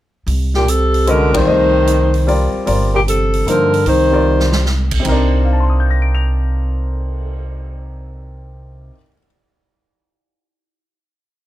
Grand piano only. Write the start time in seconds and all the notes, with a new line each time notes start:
1.06 G#3 C#4 F#4 B4 D#5
1.33 G3 C4 F4 A#4 D5
1.46 A3 G4 C5 D5 D#5
2.26 G3 C4 F4 A#4 D5
2.66 G3 C4 F4 A#4 D5
3.47 F3 A#3 D#4 A4 C5
4.12 G3 C4 F4 A#4 D5
5.00 C3 C4
5.06 D#4 A#4
5.11 D4
5.45 F5
5.53 A5
5.60 C6
5.70 D#6
5.80 G6
5.90 A#6
6.02 D7
6.15 F7